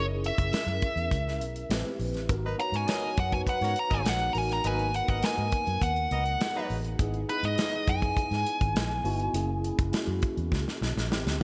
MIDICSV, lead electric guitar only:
0, 0, Header, 1, 2, 480
1, 0, Start_track
1, 0, Key_signature, 5, "minor"
1, 0, Tempo, 588235
1, 1871, Time_signature, 4, 2, 24, 8
1, 9327, End_track
2, 0, Start_track
2, 0, Title_t, "Lead electric guitar"
2, 0, Program_c, 0, 29
2, 214, Note_on_c, 0, 76, 70
2, 1610, Note_off_c, 0, 76, 0
2, 2125, Note_on_c, 0, 82, 87
2, 2241, Note_off_c, 0, 82, 0
2, 2246, Note_on_c, 0, 80, 79
2, 2357, Note_off_c, 0, 80, 0
2, 2367, Note_on_c, 0, 80, 91
2, 2606, Note_off_c, 0, 80, 0
2, 2609, Note_on_c, 0, 78, 83
2, 2723, Note_off_c, 0, 78, 0
2, 2726, Note_on_c, 0, 80, 85
2, 2767, Note_off_c, 0, 80, 0
2, 2849, Note_on_c, 0, 78, 76
2, 3086, Note_off_c, 0, 78, 0
2, 3095, Note_on_c, 0, 82, 87
2, 3206, Note_off_c, 0, 82, 0
2, 3212, Note_on_c, 0, 80, 80
2, 3335, Note_off_c, 0, 80, 0
2, 3335, Note_on_c, 0, 78, 85
2, 3533, Note_off_c, 0, 78, 0
2, 3535, Note_on_c, 0, 82, 62
2, 3557, Note_off_c, 0, 82, 0
2, 3574, Note_on_c, 0, 80, 86
2, 3674, Note_off_c, 0, 80, 0
2, 3694, Note_on_c, 0, 82, 88
2, 3794, Note_off_c, 0, 82, 0
2, 3809, Note_on_c, 0, 80, 84
2, 4041, Note_off_c, 0, 80, 0
2, 4044, Note_on_c, 0, 78, 76
2, 4148, Note_off_c, 0, 78, 0
2, 4158, Note_on_c, 0, 78, 73
2, 4277, Note_off_c, 0, 78, 0
2, 4283, Note_on_c, 0, 80, 93
2, 4754, Note_off_c, 0, 80, 0
2, 4758, Note_on_c, 0, 78, 62
2, 5440, Note_off_c, 0, 78, 0
2, 5952, Note_on_c, 0, 71, 84
2, 6073, Note_off_c, 0, 71, 0
2, 6079, Note_on_c, 0, 75, 96
2, 6439, Note_on_c, 0, 80, 88
2, 6444, Note_off_c, 0, 75, 0
2, 9040, Note_off_c, 0, 80, 0
2, 9327, End_track
0, 0, End_of_file